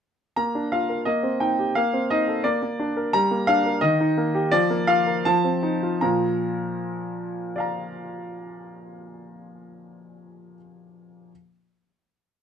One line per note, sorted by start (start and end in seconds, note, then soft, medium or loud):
0.36 1.05 A#3 soft
0.36 0.72 A#5 medium
0.55 0.83 D4 soft
0.72 1.00 F4 soft
0.72 1.07 F5 medium
0.89 1.07 A#4 soft
1.05 1.73 A#3 soft
1.05 1.41 D#5 medium
1.23 1.51 C4 soft
1.40 1.69 D#4 soft
1.40 1.75 G5 medium
1.59 1.76 G4 soft
1.75 2.42 A#3 medium
1.75 2.10 F5 medium
1.93 2.20 C4 soft
2.10 2.38 D#4 soft
2.10 2.44 D#5 medium
2.28 2.44 A4 soft
2.44 2.61 A#3 medium
2.44 3.12 D5 medium
2.62 2.89 A#3 soft
2.80 3.06 D4 soft
2.97 3.13 A#4 soft
3.13 3.79 G3 medium
3.13 3.47 A#5 loud
3.31 3.58 A#3 soft
3.47 3.75 D4 medium
3.47 3.81 F5 medium
3.66 3.82 A#4 soft
3.81 4.49 D#3 medium
3.81 4.51 D#5 medium
4.00 4.27 D#4 soft
4.18 4.45 A#3 soft
4.35 4.52 G4 medium
4.51 5.23 F3 medium
4.51 4.87 D5 medium
4.70 4.99 A#3 soft
4.87 5.17 F4 soft
4.87 5.24 F5 medium
5.07 5.25 A#4 soft
5.25 6.00 F3 medium
5.25 6.02 A5 medium
5.44 5.75 C4 soft
5.63 5.94 D#4 soft
5.83 6.02 F4 soft
6.01 10.55 A#2 medium
6.01 10.55 F3 medium
6.01 7.59 A#5 medium
7.56 10.55 D5 soft
7.56 10.56 F5 soft
7.60 10.57 A#5 soft